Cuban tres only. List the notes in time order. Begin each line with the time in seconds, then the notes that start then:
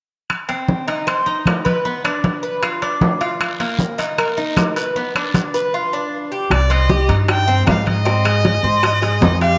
0.49 C4
0.88 D#4
1.07 C5
1.26 D#4
1.65 B4
1.85 B3
2.04 D4
2.43 B4
2.63 F4
2.82 D4
3.21 F4
3.60 A#3
3.98 D#4
4.18 A#4
4.37 D#4
4.76 B4
4.96 B3
5.16 D4
5.54 B4
5.74 F4
5.93 D4
6.32 G4
6.70 C4
6.90 G4
7.09 D#4
7.48 C4
7.67 D#4
8.05 C4
8.25 G#4
8.64 C5
9.02 G#4
9.22 D#4
9.41 G4